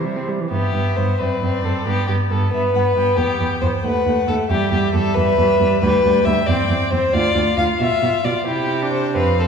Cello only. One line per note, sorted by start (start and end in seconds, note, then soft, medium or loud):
0.00 0.28 C3 soft
0.51 0.59 G2 soft
0.73 0.81 G2 soft
0.97 1.05 G2 soft
1.20 1.28 F#2 soft
1.41 1.49 F#2 soft
1.63 1.71 F#2 soft
1.86 1.94 G2 soft
2.09 2.17 G2 soft
2.30 2.38 G2 soft
2.52 2.60 G2 soft
2.74 2.82 G2 soft
2.96 3.04 G2 soft
3.18 3.26 E2 soft
3.40 3.48 E2 soft
3.62 3.70 E2 soft
3.84 3.92 D#2 soft
4.06 4.14 D#2 soft
4.28 4.36 D#2 soft
4.50 4.58 E2 medium
4.72 4.80 E2 soft
4.94 5.02 E2 soft
5.16 5.24 E2 medium
5.38 5.46 E2 medium
5.60 5.68 E2 soft
5.82 5.90 D2 medium
6.05 6.13 D2 medium
6.26 6.34 D2 medium
6.48 6.56 E2 medium
6.69 6.77 E2 medium
6.92 7.00 E2 soft
7.14 7.22 D2 medium
7.36 7.44 D2 medium
7.58 7.66 D2 medium
7.80 7.88 B2 medium
8.02 8.10 B2 medium
8.25 8.33 B2 soft
8.48 9.17 C3 medium
9.15 9.47 F2 soft